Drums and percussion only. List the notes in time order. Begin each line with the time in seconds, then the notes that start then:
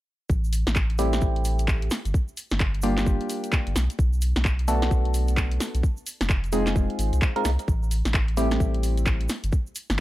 0.30 kick, cabasa
0.44 cabasa
0.53 open hi-hat, cabasa
0.67 snare, closed hi-hat, cabasa
0.76 kick, clap, cabasa
0.90 closed hi-hat
0.98 open hi-hat, cabasa
1.13 snare, closed hi-hat, cabasa
1.21 kick, cabasa
1.36 closed hi-hat
1.45 open hi-hat, cabasa
1.59 closed hi-hat, cabasa
1.68 kick, clap, cabasa
1.82 closed hi-hat
1.90 snare, open hi-hat, cabasa
2.05 closed hi-hat, cabasa
2.14 kick, cabasa
2.28 cabasa
2.37 open hi-hat, cabasa
2.50 snare, closed hi-hat, cabasa
2.60 kick, clap, cabasa
2.75 closed hi-hat
2.82 open hi-hat, cabasa
2.98 clap, snare, closed hi-hat, cabasa
3.06 kick, cabasa
3.21 closed hi-hat
3.30 open hi-hat, cabasa
3.44 closed hi-hat, cabasa
3.52 kick, clap, cabasa
3.67 closed hi-hat
3.76 snare, open hi-hat, cabasa
3.90 closed hi-hat, cabasa
3.99 kick, cabasa
4.13 cabasa
4.21 open hi-hat, cabasa
4.36 snare, closed hi-hat, cabasa
4.45 kick, clap, cabasa
4.59 closed hi-hat
4.68 open hi-hat, cabasa
4.82 snare, closed hi-hat, cabasa
4.91 kick, cabasa
5.05 closed hi-hat
5.14 open hi-hat, cabasa
5.28 closed hi-hat, cabasa
5.37 kick, clap, cabasa
5.51 closed hi-hat
5.60 snare, open hi-hat, cabasa
5.75 closed hi-hat, cabasa
5.83 kick, cabasa
5.97 cabasa
6.07 open hi-hat, cabasa
6.21 snare, closed hi-hat, cabasa
6.30 kick, clap, cabasa
6.44 closed hi-hat, cabasa
6.52 open hi-hat, cabasa
6.67 clap, snare, closed hi-hat, cabasa
6.76 kick, cabasa
6.90 closed hi-hat
6.99 open hi-hat, cabasa
7.13 closed hi-hat, cabasa
7.22 kick, clap, cabasa
7.36 closed hi-hat
7.45 snare, open hi-hat, cabasa
7.59 closed hi-hat, cabasa
7.68 kick, cabasa
7.83 cabasa
7.91 open hi-hat, cabasa
8.05 snare, closed hi-hat, cabasa
8.14 kick, clap, cabasa
8.28 closed hi-hat
8.37 open hi-hat, cabasa
8.51 snare, closed hi-hat, cabasa
8.60 kick, cabasa
8.74 closed hi-hat
8.83 open hi-hat, cabasa
8.97 closed hi-hat, cabasa
9.06 kick, clap, cabasa
9.21 closed hi-hat
9.29 snare, open hi-hat, cabasa
9.44 closed hi-hat, cabasa
9.52 kick, cabasa
9.67 cabasa
9.75 open hi-hat, cabasa
9.90 snare, closed hi-hat, cabasa